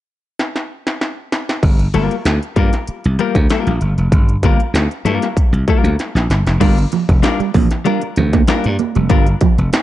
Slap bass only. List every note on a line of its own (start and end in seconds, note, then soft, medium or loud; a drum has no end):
1.63 1.87 G1 medium
1.95 2.07 G1 medium
2.25 2.38 D2 medium
2.56 2.69 G2 medium
2.88 muted slap bass stroke soft
3.05 3.16 C2 medium
3.35 3.47 D2 medium
3.67 3.78 A#1 medium
3.81 3.94 G1 medium
3.98 4.09 F1 medium
4.12 4.36 G1 medium
4.43 4.56 G1 loud
4.74 4.87 D2 medium
5.05 5.18 G2 medium
5.37 muted slap bass stroke soft
5.53 5.64 C2 medium
5.84 5.95 D2 medium
6.15 6.26 A#1 medium
6.30 6.42 G1 medium
6.46 6.58 F1 medium
6.61 6.85 G1 medium
7.09 7.20 F1 medium
7.40 muted slap bass stroke soft
7.55 7.67 A#1 medium
8.17 8.41 D2 medium
8.66 8.76 G2 loud
8.96 9.10 F1 medium
9.10 9.34 G1 loud
9.58 9.69 F1 medium